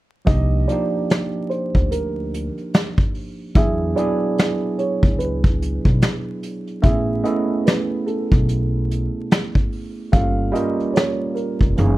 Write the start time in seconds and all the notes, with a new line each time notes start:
0.25 C2 F3 A#3 D4 D#4 G4 D#5, kick, closed hi-hat
0.68 F3 A#3 D4 D#4 D5, closed hi-hat
0.72 G4
1.10 snare, closed hi-hat
1.50 C5, closed hi-hat
1.75 D2, kick
1.91 A#4, closed hi-hat
2.34 closed hi-hat
2.58 closed hi-hat
2.74 snare, closed hi-hat
2.98 kick
3.15 open hi-hat
3.55 E2 F#3 B3 D4 E4 G#4 E5, kick, closed hi-hat
3.96 F#3 B3 D4 E4 G#4 D5, closed hi-hat
4.38 snare, closed hi-hat
4.78 C#5, closed hi-hat
5.03 C#2, kick
5.18 B4, closed hi-hat
5.44 kick
5.62 closed hi-hat
5.85 B1, kick
6.02 snare, closed hi-hat
6.43 closed hi-hat
6.67 closed hi-hat
6.82 A1 A3 B3 C#4 E4 E5, kick, closed hi-hat
6.86 G#4
7.23 A3 B3 C#4 E4 A4 D#5, closed hi-hat
7.66 B4, snare, closed hi-hat
8.06 A4, closed hi-hat
8.32 B1, kick
8.49 closed hi-hat
8.91 closed hi-hat
9.31 snare, closed hi-hat
9.55 kick
9.72 open hi-hat
10.12 G1 G3 A#3 C#4 F4 A4 F5, kick, closed hi-hat
10.52 G3 A#3 C#4 F4 A#4 D#5, closed hi-hat
10.80 closed hi-hat
10.94 C#5, snare, closed hi-hat
11.34 A#4, closed hi-hat
11.61 F1, kick
11.76 F#1 E3 A#3 C#4 D#4 G#4, closed hi-hat